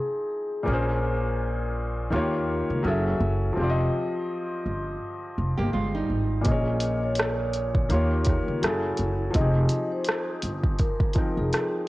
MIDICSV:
0, 0, Header, 1, 6, 480
1, 0, Start_track
1, 0, Tempo, 722892
1, 446, Time_signature, 4, 2, 24, 8
1, 7888, End_track
2, 0, Start_track
2, 0, Title_t, "Vibraphone"
2, 0, Program_c, 0, 11
2, 0, Note_on_c, 0, 68, 61
2, 424, Note_off_c, 0, 68, 0
2, 4292, Note_on_c, 0, 75, 95
2, 4669, Note_off_c, 0, 75, 0
2, 4670, Note_on_c, 0, 73, 72
2, 5461, Note_off_c, 0, 73, 0
2, 5490, Note_on_c, 0, 70, 64
2, 5704, Note_off_c, 0, 70, 0
2, 6210, Note_on_c, 0, 75, 104
2, 6566, Note_off_c, 0, 75, 0
2, 6588, Note_on_c, 0, 72, 57
2, 6803, Note_off_c, 0, 72, 0
2, 7171, Note_on_c, 0, 70, 70
2, 7527, Note_off_c, 0, 70, 0
2, 7552, Note_on_c, 0, 68, 62
2, 7888, Note_off_c, 0, 68, 0
2, 7888, End_track
3, 0, Start_track
3, 0, Title_t, "Felt piano"
3, 0, Program_c, 1, 0
3, 0, Control_c, 1, 64, 127
3, 0, Note_on_c, 1, 53, 56
3, 0, Note_on_c, 1, 60, 58
3, 0, Note_on_c, 1, 63, 54
3, 0, Note_on_c, 1, 68, 77
3, 0, Note_on_c, 1, 79, 58
3, 410, Note_off_c, 1, 53, 0
3, 418, Note_off_c, 1, 60, 0
3, 418, Note_on_c, 1, 46, 68
3, 426, Note_off_c, 1, 63, 0
3, 434, Note_off_c, 1, 79, 0
3, 435, Note_on_c, 1, 58, 74
3, 444, Note_off_c, 1, 68, 0
3, 452, Note_on_c, 1, 61, 72
3, 455, Control_c, 1, 64, 0
3, 471, Note_on_c, 1, 68, 66
3, 485, Note_on_c, 1, 72, 80
3, 571, Control_c, 1, 64, 127
3, 1372, Note_off_c, 1, 46, 0
3, 1381, Note_off_c, 1, 58, 0
3, 1390, Note_off_c, 1, 61, 0
3, 1396, Note_on_c, 1, 51, 71
3, 1399, Note_off_c, 1, 68, 0
3, 1404, Note_on_c, 1, 58, 75
3, 1407, Note_off_c, 1, 72, 0
3, 1413, Control_c, 1, 64, 0
3, 1414, Note_on_c, 1, 65, 76
3, 1424, Note_on_c, 1, 67, 71
3, 1433, Note_on_c, 1, 73, 90
3, 1530, Control_c, 1, 64, 127
3, 1877, Note_on_c, 1, 54, 79
3, 1881, Note_off_c, 1, 51, 0
3, 1884, Note_on_c, 1, 61, 79
3, 1885, Note_off_c, 1, 58, 0
3, 1890, Note_off_c, 1, 65, 0
3, 1893, Control_c, 1, 64, 0
3, 1894, Note_on_c, 1, 68, 69
3, 1895, Note_off_c, 1, 67, 0
3, 1900, Note_off_c, 1, 73, 0
3, 1903, Note_on_c, 1, 69, 74
3, 1910, Note_on_c, 1, 76, 84
3, 2018, Control_c, 1, 64, 127
3, 2342, Note_on_c, 1, 53, 74
3, 2359, Note_on_c, 1, 60, 73
3, 2361, Note_off_c, 1, 54, 0
3, 2365, Note_off_c, 1, 61, 0
3, 2370, Note_off_c, 1, 68, 0
3, 2374, Note_off_c, 1, 69, 0
3, 2375, Control_c, 1, 64, 0
3, 2376, Note_on_c, 1, 67, 71
3, 2378, Note_off_c, 1, 76, 0
3, 2394, Note_on_c, 1, 65, 68
3, 2411, Note_on_c, 1, 74, 73
3, 2439, Note_off_c, 1, 74, 0
3, 2454, Note_on_c, 1, 75, 89
3, 2486, Control_c, 1, 64, 127
3, 4247, Note_off_c, 1, 53, 0
3, 4256, Note_off_c, 1, 60, 0
3, 4257, Note_on_c, 1, 46, 63
3, 4264, Note_off_c, 1, 67, 0
3, 4273, Note_off_c, 1, 65, 0
3, 4274, Note_on_c, 1, 58, 53
3, 4294, Control_c, 1, 64, 0
3, 4294, Note_on_c, 1, 61, 56
3, 4303, Note_off_c, 1, 75, 0
3, 4307, Note_on_c, 1, 68, 58
3, 4327, Note_on_c, 1, 73, 71
3, 4395, Control_c, 1, 64, 127
3, 5212, Note_off_c, 1, 46, 0
3, 5220, Note_off_c, 1, 58, 0
3, 5231, Note_off_c, 1, 61, 0
3, 5238, Note_off_c, 1, 68, 0
3, 5238, Note_on_c, 1, 51, 71
3, 5244, Note_on_c, 1, 58, 71
3, 5248, Note_off_c, 1, 73, 0
3, 5255, Control_c, 1, 64, 0
3, 5255, Note_on_c, 1, 65, 74
3, 5263, Note_on_c, 1, 67, 65
3, 5271, Note_on_c, 1, 73, 81
3, 5361, Control_c, 1, 64, 127
3, 5722, Note_off_c, 1, 51, 0
3, 5722, Note_on_c, 1, 54, 64
3, 5725, Note_off_c, 1, 58, 0
3, 5730, Note_on_c, 1, 61, 60
3, 5731, Note_off_c, 1, 65, 0
3, 5734, Control_c, 1, 64, 0
3, 5735, Note_off_c, 1, 67, 0
3, 5738, Note_off_c, 1, 73, 0
3, 5740, Note_on_c, 1, 64, 65
3, 5746, Note_on_c, 1, 68, 61
3, 5753, Note_on_c, 1, 69, 70
3, 5837, Control_c, 1, 64, 127
3, 6179, Note_on_c, 1, 53, 59
3, 6198, Note_on_c, 1, 60, 55
3, 6204, Note_off_c, 1, 54, 0
3, 6208, Note_off_c, 1, 61, 0
3, 6212, Note_on_c, 1, 63, 56
3, 6213, Note_off_c, 1, 64, 0
3, 6214, Control_c, 1, 64, 0
3, 6216, Note_off_c, 1, 68, 0
3, 6220, Note_off_c, 1, 69, 0
3, 6230, Note_on_c, 1, 67, 58
3, 6248, Note_on_c, 1, 68, 69
3, 6312, Control_c, 1, 64, 127
3, 7368, Note_off_c, 1, 53, 0
3, 7378, Note_off_c, 1, 60, 0
3, 7385, Note_off_c, 1, 63, 0
3, 7394, Note_off_c, 1, 67, 0
3, 7402, Note_on_c, 1, 53, 50
3, 7403, Note_off_c, 1, 68, 0
3, 7411, Note_on_c, 1, 60, 39
3, 7419, Note_on_c, 1, 63, 43
3, 7428, Note_on_c, 1, 79, 43
3, 7435, Note_on_c, 1, 70, 46
3, 7888, Note_off_c, 1, 53, 0
3, 7888, Note_off_c, 1, 60, 0
3, 7888, Note_off_c, 1, 63, 0
3, 7888, Note_off_c, 1, 70, 0
3, 7888, Note_off_c, 1, 79, 0
3, 7888, End_track
4, 0, Start_track
4, 0, Title_t, "Nylon-string guitar"
4, 0, Program_c, 2, 24
4, 3702, Note_on_c, 2, 67, 75
4, 3708, Note_on_c, 2, 58, 58
4, 3798, Note_off_c, 2, 67, 0
4, 3802, Note_off_c, 2, 58, 0
4, 3805, Note_on_c, 2, 65, 76
4, 3807, Note_on_c, 2, 56, 70
4, 3939, Note_off_c, 2, 65, 0
4, 3940, Note_off_c, 2, 56, 0
4, 3948, Note_on_c, 2, 55, 62
4, 3948, Note_on_c, 2, 63, 70
4, 4269, Note_off_c, 2, 63, 0
4, 4270, Note_off_c, 2, 55, 0
4, 7888, End_track
5, 0, Start_track
5, 0, Title_t, "Upright bass"
5, 0, Program_c, 3, 32
5, 449, Note_on_c, 3, 34, 100
5, 1381, Note_off_c, 3, 34, 0
5, 1410, Note_on_c, 3, 39, 100
5, 1728, Note_off_c, 3, 39, 0
5, 1793, Note_on_c, 3, 37, 84
5, 1874, Note_off_c, 3, 37, 0
5, 1888, Note_on_c, 3, 30, 94
5, 2089, Note_off_c, 3, 30, 0
5, 2127, Note_on_c, 3, 30, 97
5, 2328, Note_off_c, 3, 30, 0
5, 2370, Note_on_c, 3, 29, 94
5, 2570, Note_off_c, 3, 29, 0
5, 3092, Note_on_c, 3, 31, 74
5, 3291, Note_off_c, 3, 31, 0
5, 3571, Note_on_c, 3, 29, 83
5, 3687, Note_off_c, 3, 29, 0
5, 3710, Note_on_c, 3, 31, 83
5, 3792, Note_off_c, 3, 31, 0
5, 3811, Note_on_c, 3, 31, 73
5, 4011, Note_off_c, 3, 31, 0
5, 4048, Note_on_c, 3, 32, 73
5, 4249, Note_off_c, 3, 32, 0
5, 4289, Note_on_c, 3, 34, 99
5, 5221, Note_off_c, 3, 34, 0
5, 5251, Note_on_c, 3, 39, 92
5, 5569, Note_off_c, 3, 39, 0
5, 5631, Note_on_c, 3, 37, 88
5, 5712, Note_off_c, 3, 37, 0
5, 5730, Note_on_c, 3, 30, 80
5, 5930, Note_off_c, 3, 30, 0
5, 5971, Note_on_c, 3, 30, 82
5, 6171, Note_off_c, 3, 30, 0
5, 6210, Note_on_c, 3, 29, 106
5, 6410, Note_off_c, 3, 29, 0
5, 6928, Note_on_c, 3, 31, 84
5, 7129, Note_off_c, 3, 31, 0
5, 7552, Note_on_c, 3, 29, 80
5, 7633, Note_off_c, 3, 29, 0
5, 7888, End_track
6, 0, Start_track
6, 0, Title_t, "Drums"
6, 4280, Note_on_c, 9, 42, 67
6, 4287, Note_on_c, 9, 36, 102
6, 4347, Note_off_c, 9, 42, 0
6, 4353, Note_off_c, 9, 36, 0
6, 4516, Note_on_c, 9, 42, 79
6, 4583, Note_off_c, 9, 42, 0
6, 4749, Note_on_c, 9, 42, 79
6, 4777, Note_on_c, 9, 37, 116
6, 4815, Note_off_c, 9, 42, 0
6, 4843, Note_off_c, 9, 37, 0
6, 5002, Note_on_c, 9, 42, 69
6, 5069, Note_off_c, 9, 42, 0
6, 5144, Note_on_c, 9, 36, 82
6, 5210, Note_off_c, 9, 36, 0
6, 5243, Note_on_c, 9, 42, 67
6, 5310, Note_off_c, 9, 42, 0
6, 5474, Note_on_c, 9, 42, 79
6, 5489, Note_on_c, 9, 36, 78
6, 5506, Note_on_c, 9, 37, 31
6, 5541, Note_off_c, 9, 42, 0
6, 5555, Note_off_c, 9, 36, 0
6, 5573, Note_off_c, 9, 37, 0
6, 5730, Note_on_c, 9, 42, 81
6, 5739, Note_on_c, 9, 37, 95
6, 5797, Note_off_c, 9, 42, 0
6, 5805, Note_off_c, 9, 37, 0
6, 5958, Note_on_c, 9, 42, 60
6, 6024, Note_off_c, 9, 42, 0
6, 6203, Note_on_c, 9, 42, 75
6, 6208, Note_on_c, 9, 36, 95
6, 6270, Note_off_c, 9, 42, 0
6, 6274, Note_off_c, 9, 36, 0
6, 6436, Note_on_c, 9, 42, 86
6, 6502, Note_off_c, 9, 42, 0
6, 6671, Note_on_c, 9, 42, 75
6, 6699, Note_on_c, 9, 37, 107
6, 6737, Note_off_c, 9, 42, 0
6, 6765, Note_off_c, 9, 37, 0
6, 6921, Note_on_c, 9, 42, 76
6, 6988, Note_off_c, 9, 42, 0
6, 7063, Note_on_c, 9, 36, 79
6, 7129, Note_off_c, 9, 36, 0
6, 7163, Note_on_c, 9, 42, 66
6, 7169, Note_on_c, 9, 36, 90
6, 7229, Note_off_c, 9, 42, 0
6, 7236, Note_off_c, 9, 36, 0
6, 7305, Note_on_c, 9, 36, 91
6, 7372, Note_off_c, 9, 36, 0
6, 7393, Note_on_c, 9, 42, 70
6, 7409, Note_on_c, 9, 36, 89
6, 7425, Note_on_c, 9, 37, 32
6, 7460, Note_off_c, 9, 42, 0
6, 7476, Note_off_c, 9, 36, 0
6, 7491, Note_off_c, 9, 37, 0
6, 7654, Note_on_c, 9, 42, 72
6, 7663, Note_on_c, 9, 37, 85
6, 7721, Note_off_c, 9, 42, 0
6, 7730, Note_off_c, 9, 37, 0
6, 7888, End_track
0, 0, End_of_file